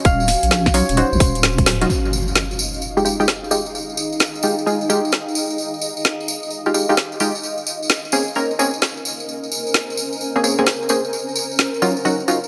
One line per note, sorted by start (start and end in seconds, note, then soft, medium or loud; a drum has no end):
0.00 1.90 C#4 medium
0.00 1.91 C#4 medium
0.00 1.90 F#4 medium
0.00 0.73 C#5 medium
0.00 0.91 D#5 medium
0.00 8.55 F5 medium
0.05 0.36 D#1 loud
0.05 1.71 F5 medium
0.05 kick loud
0.05 closed hi-hat medium
0.05 tambourine medium
0.20 tambourine soft
0.28 snare soft
0.28 open hi-hat loud
0.28 tambourine medium
0.43 0.82 A#1 medium
0.43 closed hi-hat medium
0.43 tambourine soft
0.51 snare loud
0.51 tambourine soft
0.66 kick medium
0.66 snare medium
0.66 tambourine soft
0.74 0.85 F#3 medium
0.74 0.85 C#4 medium
0.74 0.85 D#4 medium
0.74 0.85 F4 medium
0.74 1.03 C#5 medium
0.74 open hi-hat loud
0.74 tambourine medium
0.89 1.04 D#1 medium
0.89 closed hi-hat medium
0.89 tambourine soft
0.97 1.14 F#3 medium
0.97 1.14 C#4 medium
0.97 1.14 D#4 medium
0.97 1.14 F#4 medium
0.97 2.95 C5 medium
0.97 closed hi-hat medium
0.97 tambourine soft
1.12 1.18 A#1 loud
1.12 tambourine soft
1.20 1.86 D#1 loud
1.20 kick loud
1.20 open hi-hat loud
1.20 tambourine medium
1.35 closed hi-hat soft
1.35 tambourine soft
1.43 snare loud
1.43 tambourine soft
1.58 kick medium
1.58 closed hi-hat medium
1.58 tambourine soft
1.66 snare medium
1.66 open hi-hat loud
1.66 tambourine medium
1.81 1.89 F#3 medium
1.81 1.89 C#4 medium
1.81 1.89 D#4 medium
1.81 1.89 F4 medium
1.81 closed hi-hat medium
1.81 tambourine soft
1.89 9.01 D#4 medium
1.89 9.29 D#5 medium
1.89 tambourine medium
1.89 impact medium
2.05 8.99 G#4 medium
2.05 tambourine soft
2.13 tambourine medium
2.28 tambourine soft
2.35 snare loud
2.35 tambourine soft
2.51 tambourine soft
2.59 tambourine medium
2.74 tambourine soft
2.82 tambourine medium
2.97 3.03 G#3 medium
2.97 3.03 D#4 medium
2.97 3.03 F4 medium
2.97 3.03 G4 medium
2.97 tambourine soft
3.05 3.16 G#3 medium
3.05 3.16 D#4 medium
3.05 3.16 F4 medium
3.05 3.16 G4 medium
3.05 tambourine medium
3.20 3.26 G#3 medium
3.20 3.26 D#4 medium
3.20 3.26 F4 medium
3.20 3.26 G4 loud
3.20 tambourine soft
3.28 snare loud
3.28 tambourine soft
3.36 7.43 G5 medium
3.44 tambourine soft
3.51 3.62 G#3 medium
3.51 3.62 D#4 medium
3.51 3.62 F4 medium
3.51 3.62 G4 loud
3.51 tambourine medium
3.66 tambourine soft
3.75 tambourine soft
3.90 tambourine soft
3.97 tambourine medium
4.12 tambourine soft
4.20 snare loud
4.20 tambourine medium
4.35 tambourine soft
4.43 4.55 G#3 medium
4.43 4.55 D#4 medium
4.43 4.55 F4 medium
4.43 4.55 G4 medium
4.43 tambourine medium
4.58 tambourine soft
4.66 4.83 G#3 medium
4.66 4.83 D#4 medium
4.66 4.83 F4 medium
4.66 4.83 G#4 medium
4.66 tambourine soft
4.81 tambourine soft
4.89 5.01 G#3 medium
4.89 5.01 D#4 medium
4.89 5.01 F4 medium
4.89 5.01 G4 medium
4.89 tambourine medium
5.05 tambourine soft
5.12 snare loud
5.12 tambourine soft
5.28 tambourine soft
5.35 tambourine medium
5.50 tambourine soft
5.58 tambourine soft
5.74 tambourine soft
5.82 tambourine medium
5.97 tambourine soft
6.05 snare loud
6.05 tambourine medium
6.20 tambourine soft
6.28 tambourine medium
6.43 tambourine soft
6.51 tambourine soft
6.66 6.72 G#3 medium
6.66 6.72 D#4 medium
6.66 6.72 F4 medium
6.66 6.72 G4 medium
6.66 tambourine soft
6.74 6.86 G#3 medium
6.74 6.86 D#4 medium
6.74 6.86 F4 medium
6.74 6.86 G4 medium
6.74 tambourine medium
6.89 6.95 G#3 medium
6.89 6.95 D#4 medium
6.89 6.95 F4 medium
6.89 6.95 G4 loud
6.89 tambourine soft
6.97 snare loud
6.97 tambourine soft
7.12 tambourine soft
7.20 7.32 G#3 medium
7.20 7.32 D#4 medium
7.20 7.32 F4 medium
7.20 7.32 G4 loud
7.20 tambourine medium
7.35 tambourine soft
7.43 12.48 C#4 medium
7.43 tambourine medium
7.58 tambourine soft
7.67 tambourine medium
7.83 12.48 A#4 medium
7.83 tambourine soft
7.89 snare loud
7.89 tambourine medium
8.05 tambourine soft
8.12 8.24 A#3 medium
8.12 8.24 C4 medium
8.12 8.24 C#4 medium
8.12 8.24 G#4 medium
8.12 tambourine medium
8.20 12.48 C5 medium
8.28 tambourine soft
8.35 8.53 A#3 medium
8.35 8.52 C4 medium
8.35 8.53 C#4 medium
8.35 8.52 A#4 medium
8.35 tambourine soft
8.51 12.48 G#5 medium
8.51 tambourine soft
8.59 8.70 A#3 medium
8.59 8.70 C4 medium
8.59 8.70 C#4 medium
8.59 8.70 G#4 medium
8.59 tambourine medium
8.74 tambourine soft
8.82 snare loud
8.82 tambourine medium
8.97 tambourine soft
9.05 tambourine medium
9.20 tambourine soft
9.28 12.48 A#4 medium
9.28 tambourine soft
9.44 tambourine soft
9.52 tambourine medium
9.67 tambourine soft
9.74 snare loud
9.74 tambourine soft
9.90 tambourine soft
9.97 tambourine medium
10.13 tambourine soft
10.21 tambourine soft
10.36 10.42 A#3 medium
10.36 10.42 C4 medium
10.36 10.42 C#4 medium
10.36 10.42 G#4 medium
10.36 tambourine soft
10.44 10.55 A#3 medium
10.44 10.55 C4 medium
10.44 10.55 C#4 medium
10.44 10.55 G#4 medium
10.44 tambourine medium
10.59 10.65 A#3 medium
10.59 10.65 C4 medium
10.59 10.65 C#4 medium
10.59 10.65 G#4 loud
10.59 tambourine soft
10.66 snare loud
10.66 tambourine soft
10.83 tambourine soft
10.89 11.01 A#3 medium
10.89 11.01 C4 medium
10.89 11.01 C#4 medium
10.89 11.01 G#4 loud
10.89 tambourine medium
11.05 tambourine soft
11.13 tambourine soft
11.29 tambourine soft
11.36 tambourine medium
11.52 tambourine soft
11.59 snare loud
11.59 tambourine soft
11.74 tambourine soft
11.82 11.93 F#3 medium
11.82 11.93 C#4 medium
11.82 11.93 D#4 medium
11.82 11.93 F4 medium
11.82 tambourine medium
11.97 tambourine soft
12.04 12.22 F#3 medium
12.04 12.22 C#4 medium
12.04 12.22 D#4 medium
12.04 12.48 F#4 medium
12.04 12.22 F#4 medium
12.04 tambourine soft
12.20 tambourine soft
12.28 12.39 F#3 medium
12.28 12.39 C#4 medium
12.28 12.39 D#4 medium
12.28 12.39 F4 medium
12.28 tambourine medium
12.44 tambourine soft